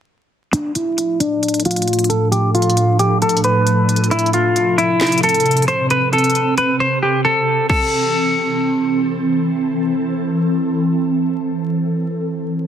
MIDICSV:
0, 0, Header, 1, 4, 480
1, 0, Start_track
1, 0, Key_signature, 0, "minor"
1, 0, Tempo, 447761
1, 570, Time_signature, 4, 2, 24, 8
1, 13582, End_track
2, 0, Start_track
2, 0, Title_t, "Clean electric guitar"
2, 0, Program_c, 0, 27
2, 567, Note_on_c, 0, 62, 88
2, 757, Note_off_c, 0, 62, 0
2, 806, Note_on_c, 0, 64, 80
2, 1259, Note_off_c, 0, 64, 0
2, 1285, Note_on_c, 0, 62, 76
2, 1738, Note_off_c, 0, 62, 0
2, 1773, Note_on_c, 0, 65, 77
2, 2223, Note_off_c, 0, 65, 0
2, 2247, Note_on_c, 0, 69, 78
2, 2437, Note_off_c, 0, 69, 0
2, 2484, Note_on_c, 0, 67, 104
2, 2675, Note_off_c, 0, 67, 0
2, 2728, Note_on_c, 0, 65, 81
2, 3180, Note_off_c, 0, 65, 0
2, 3208, Note_on_c, 0, 67, 81
2, 3398, Note_off_c, 0, 67, 0
2, 3452, Note_on_c, 0, 69, 86
2, 3640, Note_off_c, 0, 69, 0
2, 3692, Note_on_c, 0, 71, 81
2, 4368, Note_off_c, 0, 71, 0
2, 4409, Note_on_c, 0, 64, 95
2, 4599, Note_off_c, 0, 64, 0
2, 4649, Note_on_c, 0, 65, 81
2, 5101, Note_off_c, 0, 65, 0
2, 5124, Note_on_c, 0, 64, 87
2, 5578, Note_off_c, 0, 64, 0
2, 5613, Note_on_c, 0, 69, 79
2, 6063, Note_off_c, 0, 69, 0
2, 6089, Note_on_c, 0, 72, 81
2, 6278, Note_off_c, 0, 72, 0
2, 6333, Note_on_c, 0, 71, 100
2, 6521, Note_off_c, 0, 71, 0
2, 6572, Note_on_c, 0, 69, 79
2, 7023, Note_off_c, 0, 69, 0
2, 7051, Note_on_c, 0, 71, 71
2, 7240, Note_off_c, 0, 71, 0
2, 7292, Note_on_c, 0, 72, 94
2, 7480, Note_off_c, 0, 72, 0
2, 7531, Note_on_c, 0, 67, 70
2, 7720, Note_off_c, 0, 67, 0
2, 7769, Note_on_c, 0, 69, 84
2, 8221, Note_off_c, 0, 69, 0
2, 8252, Note_on_c, 0, 69, 78
2, 9648, Note_off_c, 0, 69, 0
2, 13582, End_track
3, 0, Start_track
3, 0, Title_t, "Ambient pad"
3, 0, Program_c, 1, 92
3, 569, Note_on_c, 1, 45, 75
3, 569, Note_on_c, 1, 53, 72
3, 569, Note_on_c, 1, 62, 70
3, 570, Note_on_c, 1, 69, 84
3, 4371, Note_off_c, 1, 45, 0
3, 4371, Note_off_c, 1, 53, 0
3, 4371, Note_off_c, 1, 62, 0
3, 4408, Note_on_c, 1, 60, 70
3, 4409, Note_on_c, 1, 48, 76
3, 6287, Note_off_c, 1, 69, 0
3, 6330, Note_on_c, 1, 67, 82
3, 8211, Note_off_c, 1, 48, 0
3, 8211, Note_off_c, 1, 60, 0
3, 8231, Note_off_c, 1, 67, 0
3, 8251, Note_on_c, 1, 52, 79
3, 8251, Note_on_c, 1, 60, 70
3, 8251, Note_on_c, 1, 69, 84
3, 12902, Note_off_c, 1, 52, 0
3, 12902, Note_off_c, 1, 60, 0
3, 12902, Note_off_c, 1, 69, 0
3, 13582, End_track
4, 0, Start_track
4, 0, Title_t, "Drums"
4, 570, Note_on_c, 9, 42, 70
4, 677, Note_off_c, 9, 42, 0
4, 806, Note_on_c, 9, 42, 60
4, 913, Note_off_c, 9, 42, 0
4, 1049, Note_on_c, 9, 42, 84
4, 1156, Note_off_c, 9, 42, 0
4, 1289, Note_on_c, 9, 42, 84
4, 1397, Note_off_c, 9, 42, 0
4, 1531, Note_on_c, 9, 42, 50
4, 1591, Note_off_c, 9, 42, 0
4, 1591, Note_on_c, 9, 42, 62
4, 1651, Note_off_c, 9, 42, 0
4, 1651, Note_on_c, 9, 42, 67
4, 1711, Note_off_c, 9, 42, 0
4, 1711, Note_on_c, 9, 42, 80
4, 1771, Note_off_c, 9, 42, 0
4, 1771, Note_on_c, 9, 42, 60
4, 1831, Note_off_c, 9, 42, 0
4, 1831, Note_on_c, 9, 42, 62
4, 1891, Note_off_c, 9, 42, 0
4, 1891, Note_on_c, 9, 42, 61
4, 1951, Note_off_c, 9, 42, 0
4, 1951, Note_on_c, 9, 42, 61
4, 2011, Note_off_c, 9, 42, 0
4, 2011, Note_on_c, 9, 42, 45
4, 2071, Note_off_c, 9, 42, 0
4, 2071, Note_on_c, 9, 42, 57
4, 2131, Note_off_c, 9, 42, 0
4, 2131, Note_on_c, 9, 42, 65
4, 2191, Note_off_c, 9, 42, 0
4, 2191, Note_on_c, 9, 42, 76
4, 2251, Note_off_c, 9, 42, 0
4, 2251, Note_on_c, 9, 42, 67
4, 2358, Note_off_c, 9, 42, 0
4, 2490, Note_on_c, 9, 42, 70
4, 2597, Note_off_c, 9, 42, 0
4, 2730, Note_on_c, 9, 42, 36
4, 2810, Note_off_c, 9, 42, 0
4, 2810, Note_on_c, 9, 42, 49
4, 2890, Note_off_c, 9, 42, 0
4, 2890, Note_on_c, 9, 42, 60
4, 2968, Note_off_c, 9, 42, 0
4, 2968, Note_on_c, 9, 42, 83
4, 3076, Note_off_c, 9, 42, 0
4, 3209, Note_on_c, 9, 42, 80
4, 3316, Note_off_c, 9, 42, 0
4, 3449, Note_on_c, 9, 42, 48
4, 3529, Note_off_c, 9, 42, 0
4, 3529, Note_on_c, 9, 42, 66
4, 3609, Note_off_c, 9, 42, 0
4, 3609, Note_on_c, 9, 42, 78
4, 3686, Note_off_c, 9, 42, 0
4, 3686, Note_on_c, 9, 42, 75
4, 3794, Note_off_c, 9, 42, 0
4, 3931, Note_on_c, 9, 42, 75
4, 4038, Note_off_c, 9, 42, 0
4, 4169, Note_on_c, 9, 42, 69
4, 4249, Note_off_c, 9, 42, 0
4, 4249, Note_on_c, 9, 42, 64
4, 4329, Note_off_c, 9, 42, 0
4, 4329, Note_on_c, 9, 42, 56
4, 4409, Note_off_c, 9, 42, 0
4, 4409, Note_on_c, 9, 42, 51
4, 4489, Note_off_c, 9, 42, 0
4, 4489, Note_on_c, 9, 42, 46
4, 4569, Note_off_c, 9, 42, 0
4, 4569, Note_on_c, 9, 42, 40
4, 4645, Note_off_c, 9, 42, 0
4, 4645, Note_on_c, 9, 42, 60
4, 4752, Note_off_c, 9, 42, 0
4, 4888, Note_on_c, 9, 42, 84
4, 4995, Note_off_c, 9, 42, 0
4, 5128, Note_on_c, 9, 42, 85
4, 5235, Note_off_c, 9, 42, 0
4, 5369, Note_on_c, 9, 39, 103
4, 5370, Note_on_c, 9, 38, 123
4, 5370, Note_on_c, 9, 42, 50
4, 5430, Note_off_c, 9, 42, 0
4, 5430, Note_on_c, 9, 42, 62
4, 5477, Note_off_c, 9, 38, 0
4, 5477, Note_off_c, 9, 39, 0
4, 5490, Note_off_c, 9, 42, 0
4, 5490, Note_on_c, 9, 42, 67
4, 5549, Note_off_c, 9, 42, 0
4, 5549, Note_on_c, 9, 42, 78
4, 5609, Note_off_c, 9, 42, 0
4, 5609, Note_on_c, 9, 42, 62
4, 5669, Note_off_c, 9, 42, 0
4, 5669, Note_on_c, 9, 42, 62
4, 5729, Note_off_c, 9, 42, 0
4, 5729, Note_on_c, 9, 42, 62
4, 5789, Note_off_c, 9, 42, 0
4, 5789, Note_on_c, 9, 42, 65
4, 5849, Note_off_c, 9, 42, 0
4, 5849, Note_on_c, 9, 42, 47
4, 5908, Note_off_c, 9, 42, 0
4, 5908, Note_on_c, 9, 42, 58
4, 5968, Note_off_c, 9, 42, 0
4, 5968, Note_on_c, 9, 42, 68
4, 6029, Note_off_c, 9, 42, 0
4, 6029, Note_on_c, 9, 42, 79
4, 6089, Note_off_c, 9, 42, 0
4, 6089, Note_on_c, 9, 42, 68
4, 6196, Note_off_c, 9, 42, 0
4, 6329, Note_on_c, 9, 42, 70
4, 6436, Note_off_c, 9, 42, 0
4, 6569, Note_on_c, 9, 42, 36
4, 6629, Note_off_c, 9, 42, 0
4, 6629, Note_on_c, 9, 42, 45
4, 6689, Note_off_c, 9, 42, 0
4, 6689, Note_on_c, 9, 42, 54
4, 6749, Note_off_c, 9, 42, 0
4, 6749, Note_on_c, 9, 42, 63
4, 6808, Note_off_c, 9, 42, 0
4, 6808, Note_on_c, 9, 42, 84
4, 6915, Note_off_c, 9, 42, 0
4, 7048, Note_on_c, 9, 42, 82
4, 7155, Note_off_c, 9, 42, 0
4, 8250, Note_on_c, 9, 36, 105
4, 8250, Note_on_c, 9, 49, 86
4, 8357, Note_off_c, 9, 36, 0
4, 8357, Note_off_c, 9, 49, 0
4, 13582, End_track
0, 0, End_of_file